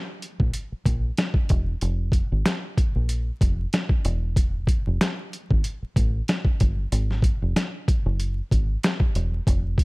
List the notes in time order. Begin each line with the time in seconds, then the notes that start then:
0.22 closed hi-hat
0.40 A#1, kick
0.54 closed hi-hat
0.72 muted fingered electric bass stroke
0.85 A#1, kick, closed hi-hat
1.17 snare, closed hi-hat
1.34 kick
1.49 E1, kick, closed hi-hat
1.81 F1, closed hi-hat
2.12 kick, closed hi-hat
2.32 G#1
2.46 snare, closed hi-hat
2.77 kick, closed hi-hat
2.96 A#1
3.09 closed hi-hat
3.41 F1, kick, closed hi-hat
3.73 snare, closed hi-hat
3.89 kick
4.05 E1, closed hi-hat
4.36 kick, closed hi-hat
4.67 kick, closed hi-hat
4.87 F1
5.01 snare, closed hi-hat
5.33 closed hi-hat
5.51 G#1, kick
5.64 closed hi-hat
5.83 muted fingered electric bass stroke
5.96 A1, kick, closed hi-hat
6.28 snare, closed hi-hat
6.45 kick
6.60 G1, kick, closed hi-hat
6.92 G#1, closed hi-hat
7.11 snare
7.22 kick, closed hi-hat
7.42 F1
7.56 snare, closed hi-hat
7.88 kick, closed hi-hat
8.06 F#1
8.20 closed hi-hat
8.51 G#1, kick, closed hi-hat
8.83 snare, closed hi-hat
9.00 kick
9.15 E1, closed hi-hat
9.47 F1, kick, closed hi-hat
9.78 kick, closed hi-hat